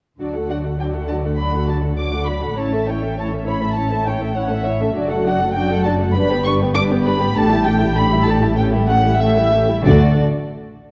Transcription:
0.18 double bass section D2, cello section D3, viola section F#3 D4, violin section F#4 D5
0.33 viola section A3 F#4, violin section A4 F#5
0.49 viola section F#3 D4, violin section F#4 D5 F#5
0.64 viola section A3 F#4, violin section A4 F#5
0.77 viola section F#3 D4, violin section F#4 D5 G5
0.94 viola section A3 F#4, violin section A4 F#5
1.08 viola section F#3 D4, violin section F#4 D5 A5
1.23 viola section A3 F#4, violin section A4 F#5
1.38 viola section F#3 D4, violin section F#4 D5 B5
1.53 viola section A3 F#4, violin section A4 F#5
1.67 viola section F#3 D4, violin section F#4 D5 A5
1.83 viola section A3 F#4, violin section A4 F#5
1.97 viola section F#3 D4, violin section F#4 D5 D6
2.13 viola section A3 F#4, violin section A4 F#5
2.27 viola section F#3 D4, violin section F#4 D5 B5
2.41 viola section A3 F#4, violin section A4 F#5
2.57 double bass section A1, cello section A2, viola section C#4 E4, violin section C#5 A5
2.72 viola section A3 C#4, violin section A4 E5
2.87 viola section C#4 E4, violin section C#5 G5
3.01 viola section A3 C#4, violin section A4 E5
3.17 viola section C#4 E4, violin section C#5 A5
3.32 viola section A3 C#4, violin section A4 E5
3.46 viola section C#4 E4, violin section C#5 B5
3.61 viola section A3 C#4, violin section A4 E5
3.75 viola section C#4 E4, violin section C#5 A5
3.90 viola section A3 C#4, violin section A4 E5
4.06 viola section C#4 E4, violin section C#5 G5
4.21 viola section A3 C#4, violin section A4 E5
4.35 viola section C#4 E4, violin section C#5 F#5
4.50 viola section A3 C#4, violin section A4 E5
4.65 viola section C#4 E4, violin section C#5 E5
4.81 viola section A3 C#4, violin section A4 E5
4.95 double bass section F#1, cello section F#2, viola section F#3 D4, violin section F#4 D5
5.10 viola section A3 F#4, violin section A4 F#5
5.25 viola section F#3 D4, violin section F#4 D5 F#5
5.40 viola section A3 F#4, violin section A4 F#5
5.55 viola section F#3 D4, violin section F#4 D5 G5
5.71 viola section A3 F#4, violin section A4 F#5
5.85 viola section F#3 D4, violin section F#4 D5 A5
6.00 viola section A3 F#4, violin section A4 F#5
6.14 double bass section G1, cello section G2, viola section G3 D4, violin section B4 D5 B5
6.31 viola section B3, violin section G4 B4
6.44 viola section G3 D4, violin section B4 D5 C#6
6.61 viola section B3, violin section G4 B4
6.75 viola section G3 D4, violin section B4 D5 D6
6.91 viola section B3, violin section G4 B4
7.05 viola section G3 D4, violin section B4 D5 B5
7.21 viola section B3, violin section G4 B4
7.35 double bass section A1, cello section A2, viola section A3 D4, violin section G4 A4 A5
7.51 viola section G3 E4, violin section E4 G4
7.66 viola section A3 D4, violin section G4 A4 G5
7.81 viola section G3 E4, violin section E4 G4
7.96 viola section A3 D4, violin section G4 A4 B5
8.11 viola section G3 E4, violin section E4 G4
8.26 viola section A3 D4, violin section G4 A4 A5
8.42 viola section G3 E4, violin section E4 G4
8.57 viola section A3 C#4, violin section G4 A4 G5
8.72 viola section G3 A3, violin section E4 G4
8.88 viola section A3 C#4, violin section G4 A4 F#5
9.04 viola section G3 A3, violin section E4 G4
9.19 viola section A3 C#4, violin section G4 A4 E5
9.36 viola section G3 A3, violin section E4 G4
9.51 viola section A3 C#4, violin section G4 A4
9.67 viola section G3 A3, violin section E4 G4
9.83 double bass section D2, cello section D3, viola section A3 D4, violin section F#4 A4 D5

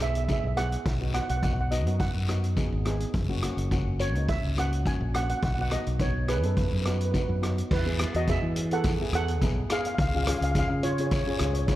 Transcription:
Already playing: fingered electric bass B1
0.00 steel pan B3 E4 G#4 E5, short guiro
0.10 steel pan E5
0.15 steel pan E5, closed hi-hat
0.24 steel pan E5
0.28 steel pan B3 E4 G#4, kick, closed hi-hat, short guiro
0.33 steel pan E5
0.40 fingered electric bass B1, steel pan E5
0.47 steel pan E5
0.57 steel pan B3 E4 G#4 F#5, cross-stick, closed hi-hat
0.72 closed hi-hat
0.86 fingered electric bass B1, kick, closed hi-hat, long guiro
1.01 steel pan B3 D#4 F#4
1.14 steel pan B3 D#4 F#4 F#5, cross-stick, closed hi-hat
1.22 steel pan F#5
1.29 fingered electric bass B1, steel pan F#5, closed hi-hat
1.37 steel pan F#5
1.43 steel pan B3 D#4 F#4 F#5, kick, closed hi-hat, short guiro
1.53 steel pan F#5
1.61 steel pan F#5
1.71 steel pan B3 D#4 F#4 D#5, closed hi-hat, short guiro
1.86 fingered electric bass F#2, steel pan B3 D#4 F#4, closed hi-hat
2.00 steel pan F#5, kick, closed hi-hat, long guiro
2.15 fingered electric bass F#2
2.28 steel pan B3 D#4 F#4, cross-stick, closed hi-hat, short guiro
2.44 closed hi-hat
2.56 steel pan B3 D#4 G#4, kick, closed hi-hat, short guiro
2.72 fingered electric bass G#1
2.85 steel pan B3 D#4 G#4, cross-stick, closed hi-hat
3.00 closed hi-hat
3.14 fingered electric bass F#1, kick, closed hi-hat, long guiro
3.29 steel pan A#3 C#4 F#4
3.42 steel pan A#3 C#4 F#4, cross-stick, closed hi-hat
3.57 fingered electric bass F#1, closed hi-hat
3.71 steel pan A#3 C#4 F#4, kick, closed hi-hat, short guiro
3.99 steel pan A#3 C#4 F#4 C#5, closed hi-hat, short guiro
4.14 fingered electric bass C#2, steel pan A#3 C#4 D#4, closed hi-hat
4.29 steel pan E5, kick, closed hi-hat, long guiro
4.44 fingered electric bass C#2
4.57 steel pan A#3 C#4 F#4 F#5, cross-stick, closed hi-hat, short guiro
4.73 closed hi-hat
4.86 steel pan A#3 C#4 F#4 G#5, kick, closed hi-hat, short guiro
5.01 fingered electric bass A#1
5.14 steel pan A#3 C#4 F#4 F#5, cross-stick, closed hi-hat
5.23 steel pan F#5
5.29 steel pan F#5, closed hi-hat
5.38 steel pan F#5
5.42 fingered electric bass B1, steel pan F#5, kick, closed hi-hat, long guiro
5.55 steel pan B3 F#5
5.59 steel pan D#4 F#4 F#5
5.71 steel pan B3 D#4 F#4 D#5, cross-stick, closed hi-hat
5.86 fingered electric bass B1, closed hi-hat
5.99 steel pan B3 D#4 F#4 C#5, kick, closed hi-hat, short guiro
6.28 steel pan B3 D#4 G#4 B4, cross-stick, closed hi-hat, short guiro
6.38 steel pan B4
6.43 fingered electric bass F#2, steel pan B3 D#4 A4 B4, closed hi-hat
6.51 steel pan B4
6.57 steel pan B4, kick, closed hi-hat, long guiro
6.67 steel pan B4
6.73 fingered electric bass F#2, steel pan B4
6.82 steel pan B3 D#4 F#4 B4, cross-stick, closed hi-hat, short guiro
6.89 steel pan B4
6.97 steel pan B4, closed hi-hat
7.05 steel pan B4
7.12 steel pan B3 D#4 F#4 B4, kick, closed hi-hat, short guiro
7.20 steel pan B4
7.28 fingered electric bass F#2, steel pan B4
7.42 steel pan B3 D#4 F#4, cross-stick, closed hi-hat
7.58 closed hi-hat
7.71 fingered electric bass E2, steel pan E4 B4, kick, crash, long guiro
7.85 steel pan B3 E4 G#4
7.99 steel pan B3 E4 B4, cross-stick, closed hi-hat
8.14 fingered electric bass E2, steel pan F#4 D#5, closed hi-hat
8.27 steel pan B3 E4 G#4 E5, kick, closed hi-hat, short guiro
8.42 fingered electric bass E3
8.56 closed hi-hat
8.71 steel pan B3 E4 G#4 A4 F#5, closed hi-hat
8.84 kick, closed hi-hat, short guiro, long guiro
9.01 steel pan B3 E4 G#4
9.13 fingered electric bass E2, steel pan B3 E4 G#4 A4 F#5, cross-stick, closed hi-hat
9.28 closed hi-hat
9.41 fingered electric bass B1, steel pan B3 E4 G#4, kick, closed hi-hat, short guiro
9.70 steel pan B3 E4 G#4 F5, cross-stick, closed hi-hat, short guiro
9.79 steel pan F5
9.85 steel pan F5, closed hi-hat
9.95 fingered electric bass C#2, steel pan F5, kick, closed hi-hat, long guiro
10.01 steel pan F5
10.08 steel pan F5
10.14 steel pan C#4 F4 G#4 F5
10.23 steel pan C#4 F5, cross-stick, closed hi-hat
10.28 steel pan F4 G#4 F5
10.38 fingered electric bass C#2, steel pan F5, closed hi-hat
10.44 steel pan F5
10.52 steel pan F5, kick, closed hi-hat, short guiro
10.56 steel pan C#4 F4 G#4 F5
10.68 fingered electric bass C#3, steel pan F5
10.83 steel pan F4 C#5, closed hi-hat
10.92 steel pan C#5
10.98 steel pan C#4 F4 G#4 C#5, closed hi-hat
11.07 steel pan C#5
11.11 steel pan C#5, kick, closed hi-hat, short guiro, long guiro
11.21 steel pan C#5
11.27 steel pan C#4 F4 G#4 C#5
11.38 fingered electric bass C#2, steel pan C#4 F4 G#4 C#5, cross-stick, closed hi-hat
11.45 steel pan C#5
11.53 steel pan C#5, closed hi-hat
11.59 steel pan C#5
11.67 fingered electric bass G#1, steel pan C#4 F4 G#4 C#5, kick, closed hi-hat, short guiro

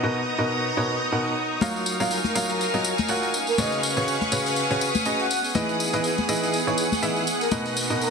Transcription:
Already playing: string section B3 C#5 D#5 F#5, string machine D#5 A#5 D#6
0.02 grand piano B2 D#4 F#4 A#4 B4 D#5, string section D#4
0.39 grand piano B2 D#4 F#4 A#4 B4 D#5
0.77 grand piano B2 D#4 F#4 A#4 B4 C#5
1.12 grand piano B2 D#4 F#4 A#4 B4 F#5
1.61 grand piano F#3 F4 F#4 A#4 C#5 F5, string machine A#4 F5 F6, tambourine, high conga
1.76 tambourine
1.86 tambourine
2.00 grand piano F#3 F4 F#4 A#4 C#5 F5, tambourine
2.11 string section G#5, tambourine
2.24 tambourine, high conga
2.35 grand piano F#3 F4 F#4 A#4 C#5 F5, tambourine
2.49 tambourine
2.61 tambourine
2.74 grand piano F#3 F4 F#4 A#4 C#5 D#5, tambourine
2.85 tambourine
2.98 tambourine, high conga
3.08 grand piano F4 F#4 A#4 C#5 F#5, tambourine
3.23 tambourine
3.34 string section C#4, string machine B4 C#6, tambourine
3.43 string section G#4
3.47 soft synth lead A#4, tambourine
3.58 grand piano C#3 C#4 F#4 G#4 B4 C#5, soft synth lead D#5, tambourine, high conga
3.72 tambourine
3.83 tambourine
3.97 grand piano C#3 C#4 F#4 G#4 B4 C#5, tambourine
4.08 tambourine
4.21 string section D#6, tambourine, high conga
4.32 grand piano C#3 C#4 F#4 G#4 B4 C#5, tambourine
4.46 tambourine
4.56 tambourine
4.71 grand piano C#3 C#4 F#4 G#4 B4 C#5, tambourine
4.81 tambourine
4.95 tambourine, high conga
5.05 grand piano C#4 F#4 G#4 B4 D#5, tambourine
5.20 soft synth lead F#5, tambourine
5.30 string section B3, string machine G#4 D#6, soft synth lead F#5, tambourine
5.44 tambourine
5.55 grand piano E3 D#4 E4 G#4 B4 D#5, tambourine, high conga
5.60 string section F#5
5.69 tambourine
5.80 tambourine
5.93 grand piano E3 D#4 E4 G#4 B4 D#5, string section G#4, tambourine
6.04 tambourine
6.18 tambourine, high conga
6.29 grand piano E3 D#4 E4 G#4 B4 D#5, tambourine
6.43 tambourine
6.54 tambourine
6.67 grand piano E3 D#4 E4 G#4 B4 C#5, tambourine
6.78 tambourine
6.92 tambourine, high conga
7.02 grand piano E3 D#4 E4 G#4 B4 E5, tambourine
7.16 tambourine
7.27 tambourine
7.41 soft synth lead A#4, tambourine
7.51 grand piano B2 D#4 F#4 A#4 B4 D#5, string section B3, string machine D#5 A#5, tambourine, high conga
7.66 tambourine
7.76 string section F#4, tambourine
7.90 grand piano B2 D#4 F#4 A#4 B4 D#5, tambourine
8.01 soft synth lead A#4, tambourine

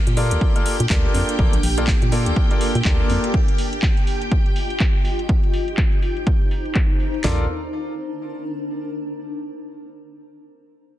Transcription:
Already playing: ambient pad A#3 D4, string machine G4 G5
0.07 fm bass A#2, closed hi-hat
0.17 grand piano A#3 F4 A4 A#4 D5, ambient pad A5, open hi-hat
0.31 fm bass D2, closed hi-hat
0.41 kick
0.56 grand piano A#3 F4 A4 A#4 D5, closed hi-hat
0.66 open hi-hat
0.80 fm bass A#2, closed hi-hat
0.90 fm bass D2, grand piano A#3 F4 A4 A#4 D5, kick, clap
1.15 fm bass F2, open hi-hat
1.29 closed hi-hat
1.39 fm bass A#1, grand piano A#3 F4 A4 A#4 D5, kick
1.53 fm bass A#1, closed hi-hat
1.63 fm bass A#1, open hi-hat
1.78 grand piano A#3 F4 A4 A#4 D5, closed hi-hat
1.87 kick, clap
2.02 fm bass A#2, closed hi-hat
2.12 grand piano A#3 F4 A4 A#4 D5, open hi-hat
2.26 fm bass D2, closed hi-hat
2.36 kick
2.51 grand piano A#3 F4 A4 A#4 D5, closed hi-hat
2.61 open hi-hat
2.75 fm bass A#2, closed hi-hat
2.85 fm bass D2, grand piano A#3 F4 A4 A#4 D5, kick, clap
3.10 fm bass F2, open hi-hat
3.24 closed hi-hat
3.34 ambient pad F4, kick
3.48 closed hi-hat
3.58 open hi-hat
3.73 closed hi-hat
3.82 kick, clap
3.88 ambient pad D#5
3.97 closed hi-hat
4.07 open hi-hat
4.22 closed hi-hat
4.32 kick
4.46 closed hi-hat
4.56 open hi-hat
4.70 closed hi-hat
4.80 kick, clap
5.05 open hi-hat
5.19 closed hi-hat
5.29 ambient pad D#4, kick
5.43 closed hi-hat
5.51 ambient pad C5, open hi-hat
5.68 closed hi-hat
5.77 kick, clap
5.92 closed hi-hat
6.02 open hi-hat
6.17 closed hi-hat
6.27 kick
6.41 closed hi-hat
6.51 open hi-hat
6.65 closed hi-hat
6.75 kick, clap
7.00 open hi-hat
7.14 closed hi-hat
7.24 fm bass A#1, ambient pad D4, grand piano F4 A4 A#4 D5, snare, clap, floor tom
7.33 ambient pad A#4
7.40 ambient pad A5

